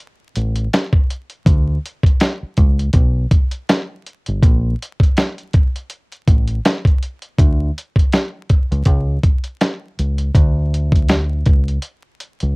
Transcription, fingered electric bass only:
0.36 A1
1.46 D2
2.43 muted fingered electric bass stroke
2.58 C#2
2.94 B1
4.28 G1
4.43 A#1
6.28 A1
7.39 D2
8.72 C#2
8.86 C#2
9.99 C#2
10.35 D2
11.47 C#2
12.43 C#2

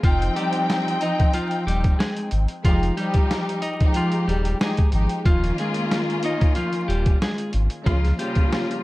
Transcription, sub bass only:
0.04 F1
1.67 D#1
2.32 G#1
2.65 F1
4.28 D#1
4.93 G#1
5.25 D#1
6.89 D#1
7.54 G#1
7.86 C#2

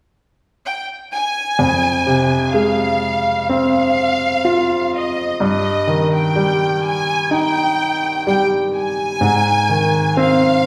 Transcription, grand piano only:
1.59 F2
2.07 C3
2.54 G#3
3.49 C4
4.45 F4
5.40 G2
5.87 D#3
6.35 G3
7.31 D#4
8.27 G3
9.21 G#2
9.69 D#3
10.17 C4

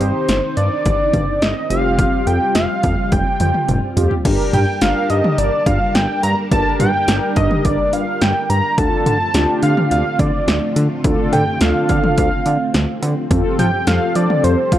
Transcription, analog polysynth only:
Already playing: C4 D#4 G4
1.70 C4 F4 G4
3.97 C4 F4 G4
4.25 D4 G4 A#4
4.82 D4 G4 A#4
6.52 D4 G4 A#4
7.08 D4 G4 A#4
8.78 D4 F4 A4
9.34 D4 F4 G4
11.04 D4 F4 A4
11.61 D4 F4 A4
13.31 C4 F4 A4
13.87 C4 F4 A4

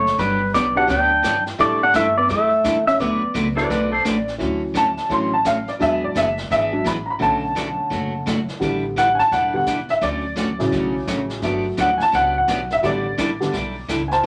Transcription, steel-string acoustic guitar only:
0.19 D3 F#3 B3 D4 G4
0.54 D3 F#3 B3 D4 G4
0.87 D3 F#3 B3 D4 G4
1.23 D3 F#3 B3 D4 G4
1.58 D3 G3 D4 E4 A4
1.93 D3 G3 D4 E4 A4
2.29 D3 G3 D4 E4 A4
2.64 D3 G3 D4 E4 A4
3.00 D3 F#3 A3 D4 F#4 B4
3.34 D3 F#3 A3 D4 F#4 B4
3.70 D3 F#3 A3 D4 F#4 B4
4.05 D3 F#3 A3 D4 F#4 B4
4.39 D3 F#3 A3 C#4 F#4
4.74 D3 F#3 A3 C#4 F#4
5.10 D3 F#3 A3 C#4 F#4
5.45 D3 F#3 A3 C#4 F#4
5.80 E3 B3 D4 G#4
6.15 E3 B3 D4 G#4
6.50 E3 B3 D4 G#4
6.84 E3 B3 D4 G#4
7.19 B2 F#3 A3 D4 F#4
7.55 B2 F#3 A3 D4 F#4
7.90 B2 F#3 A3 D4 F#4
8.26 B2 F#3 A3 D4 F#4
8.61 D3 G3 D4 E4 A4
8.96 D3 G3 D4 E4 A4
9.32 D3 G3 D4 E4 A4
9.67 D3 G3 D4 E4 A4
10.01 D3 F#3 A3 C#4 F#4
10.36 D3 F#3 A3 C#4 F#4
10.71 D3 F#3 A3 C#4 F#4
11.07 D3 F#3 A3 C#4 F#4
11.43 D3 F#3 B3 D4 G4
11.77 D3 F#3 B3 D4 G4
12.12 D3 F#3 B3 D4 G4
12.48 D3 F#3 B3 D4 G4
12.83 D3 G3 D4 E4 A4
13.18 D3 G3 D4 E4 A4
13.52 D3 G3 D4 E4 A4
13.88 D3 G3 D4 E4 A4

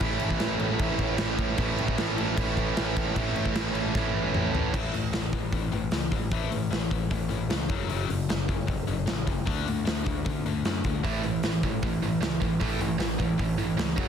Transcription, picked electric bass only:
0.01 A1
0.20 A1
0.40 A1
0.59 A1
0.80 A1
0.99 A1
1.20 A1
1.38 A1
1.58 A1
1.79 A1
2.00 A1
2.19 A1
2.37 A1
2.57 A1
2.78 A1
2.97 A1
3.16 A1
3.35 A1
3.55 A1
3.73 A1
3.95 A1
4.14 A1
4.34 A1
4.53 A1
4.74 A1
4.93 A1
5.12 A1
5.33 A1
5.52 A1
5.72 A1
5.91 C#2
6.12 A1
6.31 A1
6.51 A1
6.71 A1
6.91 A1
7.11 A1
7.30 A1
7.50 C#2
7.69 F#1
7.90 F#1
8.09 F#1
8.28 F#1
8.49 F#1
8.68 F#1
8.87 F#1
9.07 A1
9.27 F#1
9.47 D2
9.68 D2
9.87 D2
10.06 D2
10.26 D2
10.45 D2
10.65 F#2
10.85 D2
11.04 A1
11.24 A1
11.43 A1
11.64 A1
11.83 A1
12.01 A1
12.21 C#2
12.41 A1
12.61 A1
12.81 A1
12.99 A1
13.19 A1
13.39 A1
13.59 A1
13.79 C#2
13.98 F#1

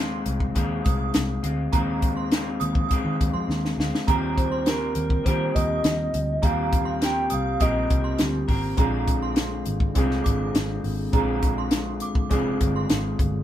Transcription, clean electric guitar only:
Already playing: D#3 G#3
0.00 C4 F4
0.55 D#3 G#3 C4 F4
1.43 G#3 C4 F4
1.72 D#3 G#3 C4 F4
2.32 D#3 G#3 C4 F4
2.91 D#3 G#3 C4 F4
3.79 G#3 C4 F4
4.07 D#3 G3 C4 G4 A#4
4.66 G3 C4 G4 A#4
5.24 D#3 G3 C4 G4
5.28 A#4
6.42 D#3 G3 C4 G4 A#4
7.01 G3 C4 G4 A#4
7.60 D#3 G3 C4 G4 A#4
8.48 C4 G4 A#4
8.77 A#2 D3 G#3 C4
8.81 F4
9.95 A#2 D3 G#3 C4
9.99 F4
11.13 A#2 D3 G#3 C4
11.17 F4
12.30 A#2 D3 G#3 C4
12.34 F4

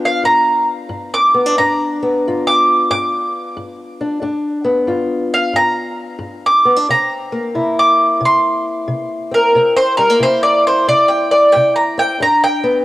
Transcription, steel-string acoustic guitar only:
Already playing: G2 B3 D4 F4
0.23 G2
0.89 G2
1.34 B3
1.46 D4
1.58 G2 D4
2.02 B3
2.27 G2 F4
2.90 G2
3.57 G2
4.01 D4
4.22 G2 D4
4.64 B3
4.87 G2 F4
5.53 G2
6.19 G2
6.65 B3
6.76 D4
6.89 C3 C4
7.32 A#3
7.55 C3 E4
8.21 C3
8.88 C3
9.31 C4
9.55 C3 C4
9.98 G3
10.10 A#3
10.19 C3 E4
10.88 C3
11.56 C3
11.98 C4
12.20 G2 D4
12.63 B3

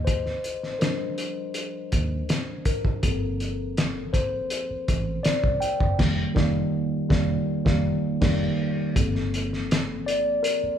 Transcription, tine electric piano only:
Already playing: D#5
0.05 C5
0.73 C5
0.79 F3 G3 D4 A#4
2.66 A#4
3.02 F3 A#3 C4 A4
4.13 C5
5.23 D5
5.61 G5
5.98 D#3 G3 A#3
6.35 D#3 G3 A#3
7.09 D#3 G3 A#3
7.65 D#3 G3 A#3
8.21 D#3 G3 A#3
8.95 F3 A#3 C4 A4
10.06 D5
10.43 A#4

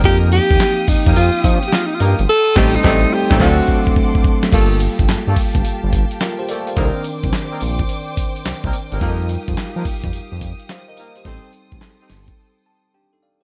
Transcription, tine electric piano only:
0.04 F3 A#3 C4 D#4 G4
2.56 G3 A3 C4 D#4 A4
2.84 G3 A3 C4 D#4 A4
3.30 G3 A3 C4 D#4 A4
3.39 F#3 A3 C4 D4 A4
4.52 G3 A#3 F4 A4
6.21 F4 A#4
6.39 G4 C5
6.49 A4 D5
6.68 C5 F5
6.77 D#3 C4 D4 A4
6.85 A#4
9.00 G3 D#4 F4 A4
9.09 A#4
10.70 C5 F5
10.88 A#4 D#5
11.17 G4 C5
11.25 G3 B3 D#4 A4
11.32 C4
12.66 A5
12.94 D4 G4 G5
13.13 D#4 A4
13.23 A4 D5 F5

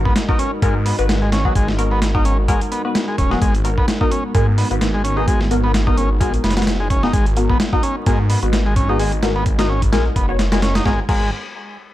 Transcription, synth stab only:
Already playing: B3 F#4 A#4
0.29 B3 F#4 A#4
0.62 B3 F#4 A#4
0.99 B3 F#4 B4
1.45 B3 F#4 G#4
1.78 B3 F#4 A#4
2.15 B3 F#4 A#4
2.48 B3 F#4 A#4
2.85 B3 F#4 B4
3.31 B3 F#4 G#4
3.65 B3 F#4 A#4
4.01 B3 F#4 A#4
4.35 B3 F#4 A#4
4.71 B3 F#4 B4
5.17 B3 F#4 G#4
5.51 B3 F#4 A#4
5.87 B3 F#4 A#4
6.20 B3 F#4 A#4
6.57 B3 F#4 B4
7.03 B3 F#4 G#4
7.37 B3 F#4 A#4
7.73 B3 F#4 A#4
8.07 B3 F#4 A#4
8.43 B3 F#4 B4
8.89 B3 F#4 G#4
9.23 B3 F#4 A#4
9.59 B3 F#4 A#4
9.92 B3 F#4 A#4
10.29 B3 F#4 C#5
10.52 B3 F#4 A#4
10.85 B3 F#4 A#4
11.09 B3 F#4 A#4

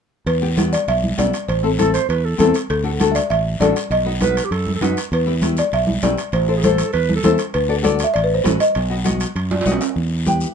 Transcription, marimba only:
0.27 B4
0.73 D5
0.88 E5
1.19 D5
1.48 C5
2.70 A4
3.11 D5 E5
3.30 E5
3.61 D5
3.91 D#5
5.14 B4
5.59 D5
5.74 E5
6.03 D5
6.34 C5
7.54 B4
8.04 E5
8.14 D5
8.24 B4
8.34 C5
8.60 D#5
10.28 G5

